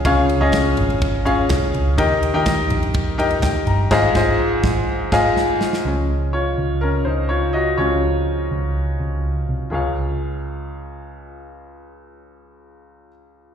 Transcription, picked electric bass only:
X:1
M:4/4
L:1/16
Q:1/4=124
K:Db
V:1 name="Picked electric bass" clef=bass
D,,3 D,,3 A,,,6 C,,2 D,,2 | E,,3 E,,3 B,,,6 E,,2 =G,,,2 | A,,,2 A,,,2 z2 A,,,2 z2 A,,,2 z4 | D,,6 D,,4 D,,6 |
D,,6 D,,4 D,,4 C,,2 | D,,16- | D,,16 |]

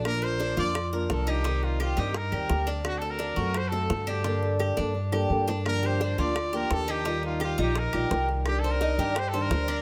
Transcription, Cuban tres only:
X:1
M:4/4
L:1/8
Q:1/4=171
K:Gm
V:1 name="Cuban tres"
D B D F2 B2 E | E2 G E2 G2 D- | D A D ^F2 A2 D | D2 G D2 G2 D |
z G D F2 G2 E | E2 G E2 G2 z | z c E G2 c2 D |]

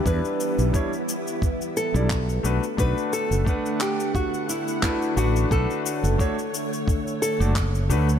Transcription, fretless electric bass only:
X:1
M:4/4
L:1/16
Q:"Swing 16ths" 1/4=88
K:Bm
V:1 name="Fretless electric bass" clef=bass
E,, z2 B,,, z6 z B,,,3 B,,, z | B,,, z2 F,,, z8 z2 A,,,2 | B,,, z2 F,,, z6 z F,,,3 D,,2 |]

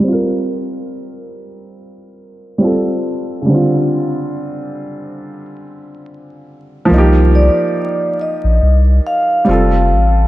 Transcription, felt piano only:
X:1
M:4/4
L:1/8
Q:"Swing 16ths" 1/4=70
K:Cm
V:1 name="Felt piano"
[G,CFB]6 [G,CF=A]2 | [_D,=D,G,CF]8 | [F,B,EG]6 [G,CF=A]2 |]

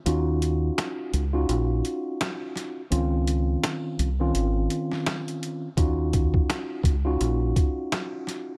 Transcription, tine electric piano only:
X:1
M:4/4
L:1/16
Q:"Swing 16ths" 1/4=84
K:Ebdor
V:1 name="Tine electric piano"
[DEFG]6 z [DEFG]8 z | [E,CDF]6 z [E,CDF]8 z | [DEFG]6 z [DEFG]8 z |]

